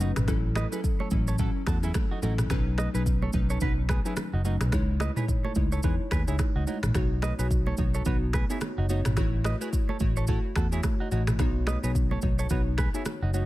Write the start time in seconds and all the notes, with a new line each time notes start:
Already playing: F#1
0.00 F#3 C#4 D#4 F#4 B4, high conga, shaker
0.16 G#1, finger snap, cross-stick, mid tom, shaker
0.28 A1 F#3 C#4 E4 A4, finger snap, kick, cross-stick, low conga, shaker
0.56 B4 D#5, finger snap, cross-stick, high conga, shaker
0.72 F#3 C#4 E4 G#4 A4 B4, shaker
0.84 kick, shaker
1.00 A4 C#5, high conga
1.11 A1 F#3 C#4 E4 A4, kick, high conga, shaker
1.28 A4 C#5, shaker
1.38 F#3 C#4 E4 F#4 A4, kick, low conga, shaker
1.67 E2 F#4 A4, finger snap, kick, cross-stick, high conga, shaker
1.83 F#3 C#4 E4 G#4 A4, shaker
1.94 finger snap, kick, cross-stick, high conga, low conga, shaker
2.11 D#4 F#4
2.22 A1 F#3 C#4 D#4 E4 F#4 A4, high conga, shaker
2.38 finger snap, cross-stick, mid tom, shaker
2.50 B1 F#3 C#4 D#4 B4, finger snap, kick, cross-stick, low conga, shaker
2.78 B4 D#5, finger snap, cross-stick, high conga, shaker
2.94 B1 F#3 C#4 D#4 G#4 B4, shaker
3.06 kick, shaker
3.22 A4 C#5, high conga
3.33 B1 F#3 C#4 D#4 B4, kick, high conga, shaker
3.50 A4 C#5, shaker
3.61 B1 F#3 C#4 D#4 F#4 B4, kick, low conga, shaker
3.89 G#4 B4, finger snap, kick, cross-stick, high conga, shaker
4.05 F#3 C#4 D#4 E4 G#4 B4, shaker
4.17 finger snap, cross-stick, high conga, low conga, shaker
4.33 F#1 D#4 F#4
4.45 F#3 C#4 D#4 F#4 B4, high conga, shaker
4.61 B1, finger snap, cross-stick, mid tom, shaker
4.72 C#2 G#3 D#4 E4 C#5, finger snap, kick, cross-stick, low conga, shaker
5.00 B4 D#5, finger snap, cross-stick, high conga, shaker
5.16 G#3 D#4 E4 G#4 B4 C#5, mid tom, shaker
5.28 kick, mid tom, shaker
5.44 A4 C#5, high conga
5.55 C#2 G#3 D#4 E4 C#5, kick, high conga, shaker
5.72 A4 C#5, shaker
5.83 E2 G#3 D#4 E4 G#4 B4 C#5, kick, low conga, shaker
6.11 D#2 G#4 B4, finger snap, kick, cross-stick, high conga, shaker
6.27 C#2 G#3 D#4 E4 G#4 C#5, shaker
6.39 finger snap, kick, cross-stick, high conga, low conga, shaker
6.55 C#2 D#4 F#4
6.67 G#3 D#4 E4 F#4 C#5, high conga, shaker
6.83 A1, finger snap, cross-stick, mid tom, shaker
6.95 B1 B3 D#4 F#4 C#5, finger snap, kick, cross-stick, low conga, shaker
7.22 B4 D#5, finger snap, cross-stick, high conga, shaker
7.38 B1 B3 D#4 F#4 G#4 B4 C#5, shaker
7.51 kick, shaker
7.67 A4 C#5, high conga
7.77 B1 B3 D#4 F#4 C#5, kick, high conga, shaker
7.94 A4 C#5, shaker
8.05 B1 B3 D#4 F#4 B4 C#5, kick, low conga, shaker
8.33 G#4 B4, finger snap, kick, cross-stick, high conga, shaker
8.50 B3 D#4 E4 F#4 G#4 C#5, shaker
8.61 finger snap, cross-stick, high conga, low conga, shaker
8.78 F#1 D#4 F#4
8.89 B3 D#4 F#4 C#5, high conga, shaker
9.05 G#1, finger snap, cross-stick, mid tom, shaker
9.17 A1 A3 E4 F#4 C#5, finger snap, kick, cross-stick, low conga, shaker
9.44 B4 D#5, finger snap, cross-stick, high conga, shaker
9.61 A3 E4 F#4 G#4 B4 C#5, shaker
9.73 kick, shaker
9.89 A4 C#5, high conga
10.00 A1 A3 E4 F#4 C#5, kick, high conga, shaker
10.17 A4 C#5, shaker
10.27 A3 E4 F#4 A4 C#5, kick, low conga, shaker
10.56 E2 F#4 A4, finger snap, kick, cross-stick, high conga, shaker
10.72 A3 E4 F#4 G#4 C#5, shaker
10.83 finger snap, kick, cross-stick, high conga, low conga, shaker
11.00 D#4 F#4
11.11 A1 A3 D#4 E4 F#4 C#5, high conga, shaker
11.27 finger snap, cross-stick, mid tom, shaker
11.39 B1 B3 D#4 F#4 C#5, finger snap, kick, cross-stick, low conga, shaker
11.67 B4 D#5, finger snap, cross-stick, high conga, shaker
11.83 B1 B3 D#4 F#4 G#4 B4 C#5, shaker
11.95 kick, shaker
12.11 A4 C#5, high conga
12.22 B1 B3 D#4 F#4 C#5, kick, high conga, shaker
12.39 A4 C#5, shaker
12.50 B1 B3 D#4 F#4 B4 C#5, kick, low conga, shaker
12.78 G#4 B4, finger snap, kick, cross-stick, high conga, shaker
12.94 B3 D#4 E4 F#4 G#4 C#5, shaker
13.05 finger snap, cross-stick, high conga, low conga, shaker
13.22 F#1 D#4 F#4
13.34 B3 D#4 F#4 C#5, high conga, shaker